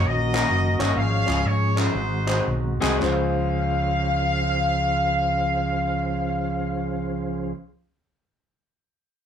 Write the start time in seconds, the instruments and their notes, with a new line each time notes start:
Already playing: tonewheel organ D#3 A#3 C#4 F#4
0.05 fingered electric bass A#1, horn section F#4 A#4 D#5
0.34 grand piano A#3 C#4 D#4 F#4 A#4, clap
0.50 fingered electric bass F#1
0.79 fingered electric bass G1, grand piano A#3 C#4 D#4 F#4 C#5, horn section D#5, clap
0.95 fingered electric bass G#1, grand piano G#2, tonewheel organ F3 G#3 G#4, horn section G#4 C#5 F5
1.26 fingered electric bass C#2, grand piano C#4 F4 G#4, clap
1.45 fingered electric bass G#2, horn section C#5
1.76 grand piano C#4 F4 A#4, horn section D#4 F#4 C5, clap
1.93 fingered electric bass G#1, grand piano G#2, tonewheel organ D#3 C4 F#4
2.27 grand piano G#3 C4 D#4 F#4 C5, clap
2.47 fingered electric bass B1
2.80 fingered electric bass C2, grand piano G#3 C4 D#4 F#4 G#4, clap
2.99 grand piano C#2 G#3 C#4 F4 C5, horn section F5, clap
3.03 fingered electric bass C#2, tonewheel organ F3 C#4 G#4 C5